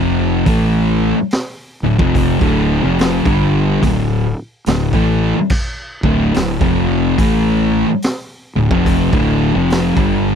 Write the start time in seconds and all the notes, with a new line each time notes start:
Already playing: F1 F2 C3 F3
0.46 A1 A2 E3 A3, kick, open hi-hat
1.31 snare, open hi-hat
1.83 D1 D2 A2
1.99 F1 F2 C3 F3, kick
2.15 kick, open hi-hat
2.40 D1 D2 A2 D3, kick
2.82 F1 F2 C3 F3
2.99 snare, open hi-hat
3.24 G1 G2 D3 G3, kick
3.83 D1 D2 A2, kick, open hi-hat
4.66 D1 D2 A2, snare, open hi-hat
4.93 A1 A2 E3 A3, kick
5.35 muted fingered electric bass stroke, muted distorted electric guitar stroke
5.50 kick, crash
6.03 D1 D2 A2 D3, kick
6.34 D1 D2 A2, snare, open hi-hat
6.60 F1 F2 C3 F3, kick
7.18 A1 A2 E3 A3, kick, open hi-hat
8.02 snare, open hi-hat
8.56 D1 D2 A2
8.71 F1 F2 C3 F3, kick
8.86 kick, open hi-hat
9.13 D1 D2 A2 D3, kick
9.55 F1 F2 C3 F3
9.70 snare, open hi-hat
9.96 G1 G2 D3 G3, kick